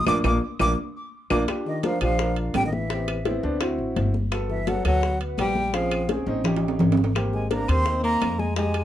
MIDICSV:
0, 0, Header, 1, 6, 480
1, 0, Start_track
1, 0, Tempo, 354400
1, 93, Time_signature, 4, 2, 24, 8
1, 11974, End_track
2, 0, Start_track
2, 0, Title_t, "Flute"
2, 0, Program_c, 0, 73
2, 103, Note_on_c, 0, 86, 91
2, 253, Note_off_c, 0, 86, 0
2, 347, Note_on_c, 0, 86, 86
2, 495, Note_off_c, 0, 86, 0
2, 824, Note_on_c, 0, 86, 113
2, 972, Note_off_c, 0, 86, 0
2, 1777, Note_on_c, 0, 86, 80
2, 1928, Note_off_c, 0, 86, 0
2, 2270, Note_on_c, 0, 75, 73
2, 2484, Note_off_c, 0, 75, 0
2, 2506, Note_on_c, 0, 77, 81
2, 2722, Note_off_c, 0, 77, 0
2, 2747, Note_on_c, 0, 77, 98
2, 3186, Note_off_c, 0, 77, 0
2, 3460, Note_on_c, 0, 79, 115
2, 3591, Note_off_c, 0, 79, 0
2, 3606, Note_on_c, 0, 75, 52
2, 3698, Note_on_c, 0, 76, 74
2, 3718, Note_off_c, 0, 75, 0
2, 4414, Note_off_c, 0, 76, 0
2, 6101, Note_on_c, 0, 76, 77
2, 6342, Note_on_c, 0, 78, 89
2, 6363, Note_off_c, 0, 76, 0
2, 6577, Note_off_c, 0, 78, 0
2, 6584, Note_on_c, 0, 78, 97
2, 7024, Note_off_c, 0, 78, 0
2, 7304, Note_on_c, 0, 79, 102
2, 7779, Note_on_c, 0, 77, 84
2, 7800, Note_off_c, 0, 79, 0
2, 8255, Note_off_c, 0, 77, 0
2, 9940, Note_on_c, 0, 80, 70
2, 10158, Note_off_c, 0, 80, 0
2, 10173, Note_on_c, 0, 82, 95
2, 10409, Note_on_c, 0, 84, 117
2, 10430, Note_off_c, 0, 82, 0
2, 10884, Note_off_c, 0, 84, 0
2, 10893, Note_on_c, 0, 82, 106
2, 11367, Note_on_c, 0, 80, 82
2, 11388, Note_off_c, 0, 82, 0
2, 11599, Note_off_c, 0, 80, 0
2, 11607, Note_on_c, 0, 80, 88
2, 11974, Note_off_c, 0, 80, 0
2, 11974, End_track
3, 0, Start_track
3, 0, Title_t, "Upright piano"
3, 0, Program_c, 1, 0
3, 92, Note_on_c, 1, 62, 98
3, 93, Note_on_c, 1, 58, 93
3, 93, Note_on_c, 1, 65, 98
3, 246, Note_off_c, 1, 58, 0
3, 246, Note_off_c, 1, 62, 0
3, 246, Note_off_c, 1, 65, 0
3, 333, Note_on_c, 1, 65, 101
3, 336, Note_on_c, 1, 58, 102
3, 338, Note_on_c, 1, 62, 83
3, 486, Note_off_c, 1, 65, 0
3, 488, Note_off_c, 1, 58, 0
3, 489, Note_off_c, 1, 62, 0
3, 813, Note_on_c, 1, 58, 104
3, 813, Note_on_c, 1, 65, 89
3, 814, Note_on_c, 1, 62, 86
3, 966, Note_off_c, 1, 58, 0
3, 966, Note_off_c, 1, 65, 0
3, 967, Note_off_c, 1, 62, 0
3, 1765, Note_on_c, 1, 58, 112
3, 1767, Note_on_c, 1, 62, 109
3, 1767, Note_on_c, 1, 65, 105
3, 1920, Note_off_c, 1, 58, 0
3, 1922, Note_off_c, 1, 62, 0
3, 1922, Note_off_c, 1, 65, 0
3, 2003, Note_on_c, 1, 62, 69
3, 2015, Note_on_c, 1, 67, 82
3, 2343, Note_off_c, 1, 62, 0
3, 2348, Note_off_c, 1, 67, 0
3, 2487, Note_on_c, 1, 62, 67
3, 2493, Note_on_c, 1, 65, 67
3, 2498, Note_on_c, 1, 70, 74
3, 2657, Note_off_c, 1, 62, 0
3, 2660, Note_off_c, 1, 65, 0
3, 2662, Note_off_c, 1, 70, 0
3, 2729, Note_on_c, 1, 62, 72
3, 2733, Note_on_c, 1, 65, 69
3, 2735, Note_on_c, 1, 67, 79
3, 2897, Note_off_c, 1, 62, 0
3, 2900, Note_off_c, 1, 65, 0
3, 2900, Note_off_c, 1, 67, 0
3, 2970, Note_on_c, 1, 62, 71
3, 2970, Note_on_c, 1, 65, 61
3, 2977, Note_on_c, 1, 70, 73
3, 3642, Note_off_c, 1, 62, 0
3, 3642, Note_off_c, 1, 65, 0
3, 3646, Note_off_c, 1, 70, 0
3, 3931, Note_on_c, 1, 59, 62
3, 3940, Note_on_c, 1, 60, 59
3, 3946, Note_on_c, 1, 67, 62
3, 4267, Note_off_c, 1, 59, 0
3, 4271, Note_off_c, 1, 60, 0
3, 4274, Note_off_c, 1, 67, 0
3, 4411, Note_on_c, 1, 59, 84
3, 4415, Note_on_c, 1, 60, 75
3, 4417, Note_on_c, 1, 64, 83
3, 4579, Note_off_c, 1, 59, 0
3, 4581, Note_off_c, 1, 60, 0
3, 4582, Note_off_c, 1, 64, 0
3, 4648, Note_on_c, 1, 59, 84
3, 4656, Note_on_c, 1, 60, 75
3, 4659, Note_on_c, 1, 62, 93
3, 4817, Note_off_c, 1, 59, 0
3, 4821, Note_off_c, 1, 60, 0
3, 4823, Note_off_c, 1, 62, 0
3, 4888, Note_on_c, 1, 60, 86
3, 4891, Note_on_c, 1, 64, 80
3, 4901, Note_on_c, 1, 66, 97
3, 5561, Note_off_c, 1, 60, 0
3, 5563, Note_off_c, 1, 64, 0
3, 5568, Note_off_c, 1, 66, 0
3, 5845, Note_on_c, 1, 59, 74
3, 5850, Note_on_c, 1, 66, 70
3, 5853, Note_on_c, 1, 69, 82
3, 6184, Note_off_c, 1, 59, 0
3, 6186, Note_off_c, 1, 66, 0
3, 6188, Note_off_c, 1, 69, 0
3, 6325, Note_on_c, 1, 59, 73
3, 6334, Note_on_c, 1, 66, 73
3, 6337, Note_on_c, 1, 69, 79
3, 6496, Note_off_c, 1, 59, 0
3, 6500, Note_off_c, 1, 66, 0
3, 6502, Note_off_c, 1, 69, 0
3, 6564, Note_on_c, 1, 59, 68
3, 6571, Note_on_c, 1, 66, 64
3, 6574, Note_on_c, 1, 69, 75
3, 6735, Note_off_c, 1, 59, 0
3, 6739, Note_off_c, 1, 66, 0
3, 6740, Note_off_c, 1, 69, 0
3, 6808, Note_on_c, 1, 59, 66
3, 6809, Note_on_c, 1, 66, 59
3, 6815, Note_on_c, 1, 71, 75
3, 7481, Note_off_c, 1, 59, 0
3, 7482, Note_off_c, 1, 66, 0
3, 7484, Note_off_c, 1, 71, 0
3, 7771, Note_on_c, 1, 60, 62
3, 7776, Note_on_c, 1, 61, 57
3, 7782, Note_on_c, 1, 68, 72
3, 8107, Note_off_c, 1, 60, 0
3, 8109, Note_off_c, 1, 61, 0
3, 8112, Note_off_c, 1, 68, 0
3, 8257, Note_on_c, 1, 60, 74
3, 8260, Note_on_c, 1, 61, 68
3, 8267, Note_on_c, 1, 68, 85
3, 8422, Note_off_c, 1, 60, 0
3, 8423, Note_off_c, 1, 61, 0
3, 8427, Note_off_c, 1, 68, 0
3, 8495, Note_on_c, 1, 60, 83
3, 8501, Note_on_c, 1, 61, 71
3, 8504, Note_on_c, 1, 63, 101
3, 8660, Note_off_c, 1, 60, 0
3, 8663, Note_off_c, 1, 61, 0
3, 8665, Note_off_c, 1, 63, 0
3, 8740, Note_on_c, 1, 61, 83
3, 8745, Note_on_c, 1, 63, 81
3, 8749, Note_on_c, 1, 67, 88
3, 9407, Note_off_c, 1, 61, 0
3, 9410, Note_off_c, 1, 63, 0
3, 9411, Note_off_c, 1, 67, 0
3, 9695, Note_on_c, 1, 58, 69
3, 9701, Note_on_c, 1, 60, 67
3, 9705, Note_on_c, 1, 67, 89
3, 10028, Note_off_c, 1, 58, 0
3, 10032, Note_off_c, 1, 60, 0
3, 10034, Note_off_c, 1, 67, 0
3, 10178, Note_on_c, 1, 58, 72
3, 10182, Note_on_c, 1, 60, 61
3, 10188, Note_on_c, 1, 62, 76
3, 10342, Note_off_c, 1, 58, 0
3, 10344, Note_off_c, 1, 60, 0
3, 10347, Note_off_c, 1, 62, 0
3, 10416, Note_on_c, 1, 58, 68
3, 10418, Note_on_c, 1, 60, 60
3, 10424, Note_on_c, 1, 67, 71
3, 10581, Note_off_c, 1, 58, 0
3, 10582, Note_off_c, 1, 60, 0
3, 10585, Note_off_c, 1, 67, 0
3, 10650, Note_on_c, 1, 58, 64
3, 10655, Note_on_c, 1, 60, 68
3, 10659, Note_on_c, 1, 63, 77
3, 11322, Note_off_c, 1, 58, 0
3, 11325, Note_off_c, 1, 60, 0
3, 11327, Note_off_c, 1, 63, 0
3, 11606, Note_on_c, 1, 56, 61
3, 11611, Note_on_c, 1, 63, 52
3, 11619, Note_on_c, 1, 67, 76
3, 11945, Note_off_c, 1, 56, 0
3, 11947, Note_off_c, 1, 63, 0
3, 11951, Note_off_c, 1, 67, 0
3, 11974, End_track
4, 0, Start_track
4, 0, Title_t, "Tenor saxophone"
4, 0, Program_c, 2, 66
4, 2261, Note_on_c, 2, 51, 65
4, 2479, Note_off_c, 2, 51, 0
4, 2500, Note_on_c, 2, 53, 72
4, 2719, Note_off_c, 2, 53, 0
4, 2733, Note_on_c, 2, 53, 79
4, 3178, Note_off_c, 2, 53, 0
4, 3463, Note_on_c, 2, 55, 73
4, 3593, Note_off_c, 2, 55, 0
4, 3602, Note_on_c, 2, 51, 56
4, 3698, Note_on_c, 2, 52, 65
4, 3718, Note_off_c, 2, 51, 0
4, 4414, Note_off_c, 2, 52, 0
4, 6087, Note_on_c, 2, 52, 64
4, 6335, Note_on_c, 2, 54, 77
4, 6355, Note_off_c, 2, 52, 0
4, 6573, Note_off_c, 2, 54, 0
4, 6579, Note_on_c, 2, 54, 87
4, 7022, Note_off_c, 2, 54, 0
4, 7306, Note_on_c, 2, 55, 83
4, 7776, Note_on_c, 2, 53, 83
4, 7796, Note_off_c, 2, 55, 0
4, 8253, Note_off_c, 2, 53, 0
4, 9925, Note_on_c, 2, 56, 60
4, 10150, Note_off_c, 2, 56, 0
4, 10165, Note_on_c, 2, 58, 80
4, 10408, Note_on_c, 2, 60, 95
4, 10428, Note_off_c, 2, 58, 0
4, 10869, Note_off_c, 2, 60, 0
4, 10877, Note_on_c, 2, 58, 92
4, 11359, Note_on_c, 2, 56, 76
4, 11380, Note_off_c, 2, 58, 0
4, 11594, Note_off_c, 2, 56, 0
4, 11602, Note_on_c, 2, 56, 86
4, 11974, Note_off_c, 2, 56, 0
4, 11974, End_track
5, 0, Start_track
5, 0, Title_t, "Upright bass"
5, 0, Program_c, 3, 32
5, 90, Note_on_c, 3, 34, 94
5, 270, Note_off_c, 3, 34, 0
5, 328, Note_on_c, 3, 34, 94
5, 508, Note_off_c, 3, 34, 0
5, 808, Note_on_c, 3, 34, 97
5, 988, Note_off_c, 3, 34, 0
5, 1771, Note_on_c, 3, 34, 94
5, 1950, Note_off_c, 3, 34, 0
5, 2724, Note_on_c, 3, 34, 92
5, 3396, Note_off_c, 3, 34, 0
5, 3450, Note_on_c, 3, 33, 88
5, 4572, Note_off_c, 3, 33, 0
5, 4650, Note_on_c, 3, 38, 91
5, 5097, Note_off_c, 3, 38, 0
5, 5123, Note_on_c, 3, 33, 58
5, 5350, Note_off_c, 3, 33, 0
5, 5367, Note_on_c, 3, 31, 86
5, 6491, Note_off_c, 3, 31, 0
5, 6565, Note_on_c, 3, 38, 83
5, 7237, Note_off_c, 3, 38, 0
5, 7280, Note_on_c, 3, 34, 87
5, 8407, Note_off_c, 3, 34, 0
5, 8484, Note_on_c, 3, 33, 85
5, 9156, Note_off_c, 3, 33, 0
5, 9208, Note_on_c, 3, 32, 86
5, 10331, Note_off_c, 3, 32, 0
5, 10410, Note_on_c, 3, 39, 91
5, 11080, Note_off_c, 3, 39, 0
5, 11128, Note_on_c, 3, 41, 82
5, 11974, Note_off_c, 3, 41, 0
5, 11974, End_track
6, 0, Start_track
6, 0, Title_t, "Drums"
6, 87, Note_on_c, 9, 56, 99
6, 89, Note_on_c, 9, 75, 95
6, 90, Note_on_c, 9, 63, 109
6, 90, Note_on_c, 9, 65, 100
6, 223, Note_off_c, 9, 56, 0
6, 224, Note_off_c, 9, 75, 0
6, 225, Note_off_c, 9, 63, 0
6, 226, Note_off_c, 9, 65, 0
6, 326, Note_on_c, 9, 75, 92
6, 327, Note_on_c, 9, 56, 93
6, 327, Note_on_c, 9, 63, 99
6, 328, Note_on_c, 9, 65, 115
6, 461, Note_off_c, 9, 75, 0
6, 462, Note_off_c, 9, 56, 0
6, 462, Note_off_c, 9, 63, 0
6, 464, Note_off_c, 9, 65, 0
6, 805, Note_on_c, 9, 75, 94
6, 808, Note_on_c, 9, 56, 96
6, 808, Note_on_c, 9, 63, 113
6, 808, Note_on_c, 9, 65, 104
6, 941, Note_off_c, 9, 75, 0
6, 943, Note_off_c, 9, 65, 0
6, 944, Note_off_c, 9, 56, 0
6, 944, Note_off_c, 9, 63, 0
6, 1764, Note_on_c, 9, 56, 106
6, 1766, Note_on_c, 9, 75, 104
6, 1768, Note_on_c, 9, 65, 109
6, 1772, Note_on_c, 9, 63, 99
6, 1900, Note_off_c, 9, 56, 0
6, 1901, Note_off_c, 9, 75, 0
6, 1903, Note_off_c, 9, 65, 0
6, 1908, Note_off_c, 9, 63, 0
6, 2006, Note_on_c, 9, 65, 86
6, 2010, Note_on_c, 9, 60, 64
6, 2011, Note_on_c, 9, 75, 60
6, 2014, Note_on_c, 9, 63, 28
6, 2141, Note_off_c, 9, 65, 0
6, 2146, Note_off_c, 9, 60, 0
6, 2146, Note_off_c, 9, 75, 0
6, 2150, Note_off_c, 9, 63, 0
6, 2252, Note_on_c, 9, 63, 36
6, 2254, Note_on_c, 9, 60, 31
6, 2387, Note_off_c, 9, 63, 0
6, 2389, Note_off_c, 9, 60, 0
6, 2482, Note_on_c, 9, 65, 67
6, 2485, Note_on_c, 9, 63, 93
6, 2492, Note_on_c, 9, 60, 53
6, 2618, Note_off_c, 9, 65, 0
6, 2621, Note_off_c, 9, 63, 0
6, 2627, Note_off_c, 9, 60, 0
6, 2721, Note_on_c, 9, 65, 98
6, 2729, Note_on_c, 9, 60, 31
6, 2729, Note_on_c, 9, 63, 30
6, 2729, Note_on_c, 9, 75, 58
6, 2857, Note_off_c, 9, 65, 0
6, 2864, Note_off_c, 9, 60, 0
6, 2865, Note_off_c, 9, 63, 0
6, 2865, Note_off_c, 9, 75, 0
6, 2968, Note_on_c, 9, 60, 71
6, 2973, Note_on_c, 9, 63, 34
6, 3103, Note_off_c, 9, 60, 0
6, 3108, Note_off_c, 9, 63, 0
6, 3201, Note_on_c, 9, 65, 60
6, 3215, Note_on_c, 9, 63, 32
6, 3337, Note_off_c, 9, 65, 0
6, 3350, Note_off_c, 9, 63, 0
6, 3441, Note_on_c, 9, 65, 82
6, 3441, Note_on_c, 9, 66, 73
6, 3448, Note_on_c, 9, 75, 54
6, 3452, Note_on_c, 9, 63, 81
6, 3453, Note_on_c, 9, 60, 30
6, 3453, Note_on_c, 9, 61, 74
6, 3577, Note_off_c, 9, 65, 0
6, 3577, Note_off_c, 9, 66, 0
6, 3584, Note_off_c, 9, 75, 0
6, 3588, Note_off_c, 9, 63, 0
6, 3589, Note_off_c, 9, 60, 0
6, 3589, Note_off_c, 9, 61, 0
6, 3690, Note_on_c, 9, 63, 79
6, 3696, Note_on_c, 9, 60, 36
6, 3826, Note_off_c, 9, 63, 0
6, 3831, Note_off_c, 9, 60, 0
6, 3929, Note_on_c, 9, 65, 65
6, 3930, Note_on_c, 9, 60, 63
6, 3933, Note_on_c, 9, 63, 32
6, 4065, Note_off_c, 9, 60, 0
6, 4065, Note_off_c, 9, 65, 0
6, 4069, Note_off_c, 9, 63, 0
6, 4167, Note_on_c, 9, 60, 33
6, 4169, Note_on_c, 9, 63, 38
6, 4171, Note_on_c, 9, 65, 89
6, 4171, Note_on_c, 9, 75, 59
6, 4302, Note_off_c, 9, 60, 0
6, 4305, Note_off_c, 9, 63, 0
6, 4306, Note_off_c, 9, 65, 0
6, 4306, Note_off_c, 9, 75, 0
6, 4407, Note_on_c, 9, 63, 88
6, 4407, Note_on_c, 9, 65, 65
6, 4408, Note_on_c, 9, 60, 54
6, 4542, Note_off_c, 9, 63, 0
6, 4543, Note_off_c, 9, 65, 0
6, 4544, Note_off_c, 9, 60, 0
6, 4649, Note_on_c, 9, 60, 33
6, 4649, Note_on_c, 9, 63, 35
6, 4785, Note_off_c, 9, 60, 0
6, 4785, Note_off_c, 9, 63, 0
6, 4883, Note_on_c, 9, 60, 65
6, 4885, Note_on_c, 9, 65, 96
6, 4888, Note_on_c, 9, 63, 32
6, 4888, Note_on_c, 9, 75, 61
6, 5019, Note_off_c, 9, 60, 0
6, 5020, Note_off_c, 9, 65, 0
6, 5023, Note_off_c, 9, 63, 0
6, 5024, Note_off_c, 9, 75, 0
6, 5131, Note_on_c, 9, 63, 32
6, 5266, Note_off_c, 9, 63, 0
6, 5368, Note_on_c, 9, 63, 91
6, 5370, Note_on_c, 9, 60, 30
6, 5370, Note_on_c, 9, 61, 72
6, 5370, Note_on_c, 9, 65, 64
6, 5504, Note_off_c, 9, 63, 0
6, 5505, Note_off_c, 9, 65, 0
6, 5506, Note_off_c, 9, 60, 0
6, 5506, Note_off_c, 9, 61, 0
6, 5608, Note_on_c, 9, 63, 78
6, 5612, Note_on_c, 9, 60, 34
6, 5743, Note_off_c, 9, 63, 0
6, 5747, Note_off_c, 9, 60, 0
6, 5847, Note_on_c, 9, 65, 86
6, 5848, Note_on_c, 9, 63, 31
6, 5850, Note_on_c, 9, 75, 57
6, 5852, Note_on_c, 9, 60, 64
6, 5983, Note_off_c, 9, 63, 0
6, 5983, Note_off_c, 9, 65, 0
6, 5985, Note_off_c, 9, 75, 0
6, 5987, Note_off_c, 9, 60, 0
6, 6089, Note_on_c, 9, 60, 37
6, 6089, Note_on_c, 9, 63, 35
6, 6224, Note_off_c, 9, 63, 0
6, 6225, Note_off_c, 9, 60, 0
6, 6327, Note_on_c, 9, 63, 95
6, 6327, Note_on_c, 9, 65, 66
6, 6336, Note_on_c, 9, 60, 52
6, 6462, Note_off_c, 9, 63, 0
6, 6463, Note_off_c, 9, 65, 0
6, 6471, Note_off_c, 9, 60, 0
6, 6566, Note_on_c, 9, 63, 36
6, 6568, Note_on_c, 9, 65, 93
6, 6571, Note_on_c, 9, 75, 65
6, 6575, Note_on_c, 9, 60, 32
6, 6701, Note_off_c, 9, 63, 0
6, 6704, Note_off_c, 9, 65, 0
6, 6707, Note_off_c, 9, 75, 0
6, 6710, Note_off_c, 9, 60, 0
6, 6809, Note_on_c, 9, 63, 38
6, 6815, Note_on_c, 9, 60, 62
6, 6944, Note_off_c, 9, 63, 0
6, 6950, Note_off_c, 9, 60, 0
6, 7048, Note_on_c, 9, 63, 32
6, 7053, Note_on_c, 9, 65, 68
6, 7183, Note_off_c, 9, 63, 0
6, 7188, Note_off_c, 9, 65, 0
6, 7288, Note_on_c, 9, 63, 91
6, 7294, Note_on_c, 9, 75, 55
6, 7297, Note_on_c, 9, 65, 93
6, 7298, Note_on_c, 9, 60, 29
6, 7298, Note_on_c, 9, 61, 74
6, 7423, Note_off_c, 9, 63, 0
6, 7429, Note_off_c, 9, 75, 0
6, 7433, Note_off_c, 9, 65, 0
6, 7434, Note_off_c, 9, 60, 0
6, 7434, Note_off_c, 9, 61, 0
6, 7522, Note_on_c, 9, 63, 83
6, 7536, Note_on_c, 9, 60, 38
6, 7657, Note_off_c, 9, 63, 0
6, 7672, Note_off_c, 9, 60, 0
6, 7763, Note_on_c, 9, 63, 30
6, 7772, Note_on_c, 9, 60, 65
6, 7773, Note_on_c, 9, 65, 69
6, 7898, Note_off_c, 9, 63, 0
6, 7907, Note_off_c, 9, 60, 0
6, 7908, Note_off_c, 9, 65, 0
6, 8009, Note_on_c, 9, 63, 34
6, 8010, Note_on_c, 9, 65, 97
6, 8013, Note_on_c, 9, 75, 65
6, 8014, Note_on_c, 9, 60, 35
6, 8145, Note_off_c, 9, 63, 0
6, 8146, Note_off_c, 9, 65, 0
6, 8148, Note_off_c, 9, 75, 0
6, 8149, Note_off_c, 9, 60, 0
6, 8247, Note_on_c, 9, 63, 99
6, 8250, Note_on_c, 9, 65, 66
6, 8252, Note_on_c, 9, 60, 59
6, 8382, Note_off_c, 9, 63, 0
6, 8386, Note_off_c, 9, 65, 0
6, 8387, Note_off_c, 9, 60, 0
6, 8487, Note_on_c, 9, 63, 93
6, 8498, Note_on_c, 9, 60, 36
6, 8623, Note_off_c, 9, 63, 0
6, 8633, Note_off_c, 9, 60, 0
6, 8725, Note_on_c, 9, 64, 86
6, 8729, Note_on_c, 9, 75, 57
6, 8735, Note_on_c, 9, 60, 67
6, 8735, Note_on_c, 9, 65, 74
6, 8860, Note_off_c, 9, 64, 0
6, 8865, Note_off_c, 9, 75, 0
6, 8870, Note_off_c, 9, 65, 0
6, 8871, Note_off_c, 9, 60, 0
6, 8891, Note_on_c, 9, 65, 76
6, 9027, Note_off_c, 9, 65, 0
6, 9051, Note_on_c, 9, 66, 83
6, 9186, Note_off_c, 9, 66, 0
6, 9200, Note_on_c, 9, 64, 102
6, 9213, Note_on_c, 9, 66, 79
6, 9216, Note_on_c, 9, 60, 33
6, 9216, Note_on_c, 9, 61, 69
6, 9335, Note_off_c, 9, 64, 0
6, 9349, Note_off_c, 9, 66, 0
6, 9351, Note_off_c, 9, 60, 0
6, 9351, Note_off_c, 9, 61, 0
6, 9374, Note_on_c, 9, 66, 91
6, 9445, Note_on_c, 9, 64, 88
6, 9457, Note_on_c, 9, 60, 37
6, 9510, Note_off_c, 9, 66, 0
6, 9533, Note_on_c, 9, 66, 91
6, 9580, Note_off_c, 9, 64, 0
6, 9593, Note_off_c, 9, 60, 0
6, 9668, Note_off_c, 9, 66, 0
6, 9688, Note_on_c, 9, 63, 32
6, 9689, Note_on_c, 9, 75, 59
6, 9695, Note_on_c, 9, 65, 88
6, 9698, Note_on_c, 9, 60, 64
6, 9824, Note_off_c, 9, 63, 0
6, 9824, Note_off_c, 9, 75, 0
6, 9831, Note_off_c, 9, 65, 0
6, 9833, Note_off_c, 9, 60, 0
6, 9931, Note_on_c, 9, 60, 33
6, 9934, Note_on_c, 9, 63, 38
6, 10066, Note_off_c, 9, 60, 0
6, 10069, Note_off_c, 9, 63, 0
6, 10167, Note_on_c, 9, 63, 96
6, 10168, Note_on_c, 9, 60, 53
6, 10174, Note_on_c, 9, 65, 72
6, 10303, Note_off_c, 9, 60, 0
6, 10303, Note_off_c, 9, 63, 0
6, 10309, Note_off_c, 9, 65, 0
6, 10407, Note_on_c, 9, 75, 57
6, 10408, Note_on_c, 9, 63, 34
6, 10410, Note_on_c, 9, 60, 31
6, 10417, Note_on_c, 9, 65, 92
6, 10543, Note_off_c, 9, 75, 0
6, 10544, Note_off_c, 9, 63, 0
6, 10545, Note_off_c, 9, 60, 0
6, 10552, Note_off_c, 9, 65, 0
6, 10642, Note_on_c, 9, 60, 72
6, 10648, Note_on_c, 9, 63, 35
6, 10778, Note_off_c, 9, 60, 0
6, 10783, Note_off_c, 9, 63, 0
6, 10889, Note_on_c, 9, 63, 32
6, 10889, Note_on_c, 9, 65, 57
6, 11024, Note_off_c, 9, 63, 0
6, 11024, Note_off_c, 9, 65, 0
6, 11125, Note_on_c, 9, 63, 83
6, 11128, Note_on_c, 9, 65, 99
6, 11128, Note_on_c, 9, 66, 65
6, 11129, Note_on_c, 9, 60, 29
6, 11129, Note_on_c, 9, 61, 72
6, 11130, Note_on_c, 9, 75, 59
6, 11260, Note_off_c, 9, 63, 0
6, 11264, Note_off_c, 9, 60, 0
6, 11264, Note_off_c, 9, 61, 0
6, 11264, Note_off_c, 9, 65, 0
6, 11264, Note_off_c, 9, 66, 0
6, 11266, Note_off_c, 9, 75, 0
6, 11367, Note_on_c, 9, 60, 35
6, 11370, Note_on_c, 9, 63, 81
6, 11503, Note_off_c, 9, 60, 0
6, 11505, Note_off_c, 9, 63, 0
6, 11599, Note_on_c, 9, 60, 68
6, 11604, Note_on_c, 9, 65, 67
6, 11606, Note_on_c, 9, 63, 34
6, 11735, Note_off_c, 9, 60, 0
6, 11739, Note_off_c, 9, 65, 0
6, 11742, Note_off_c, 9, 63, 0
6, 11840, Note_on_c, 9, 65, 90
6, 11843, Note_on_c, 9, 60, 34
6, 11845, Note_on_c, 9, 75, 60
6, 11974, Note_off_c, 9, 60, 0
6, 11974, Note_off_c, 9, 65, 0
6, 11974, Note_off_c, 9, 75, 0
6, 11974, End_track
0, 0, End_of_file